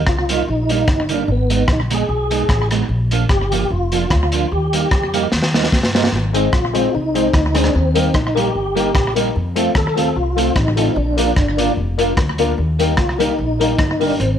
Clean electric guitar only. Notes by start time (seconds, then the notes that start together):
0.30 G3 A#3 D#4
0.69 G3 A#3 D#4
1.10 G3 A#3 D#4
1.50 G#3 B3 D#4
1.91 G#3 B3 D#4
2.30 G#3 B3 D#4
2.71 G#3 B3 D#4
3.11 F3 A#3 D4
3.52 F3 A#3 D4
3.92 F3 A#3 D4
4.33 F3 A#3 D4
4.73 G3 A#3 D#4
5.14 G3 A#3 D#4
5.54 G3 A#3 D#4
5.95 G3 A#3 D#4
6.35 G#3 C4 D#4
6.75 G#3 C4 D#4
7.15 G#3 C4 D#4
7.55 G#3 C4 D#4
7.95 G3 A#3 D#4
8.36 G3 A#3 D#4
8.76 G3 A#3 D#4
9.16 G3 A#3 D#4
9.56 A3 C4 F4
9.97 A3 C4 F4
10.37 A3 C4 F4
10.78 A3 C4 F4
11.18 A#3 D4 F4
11.59 A#3 D4 F4
11.99 A#3 D4 F4
12.39 A#3 D4 F4
12.79 G3 A#3 D#4
13.19 G3 A#3 D#4
13.60 G3 A#3 D#4
14.01 G3 A#3 D#4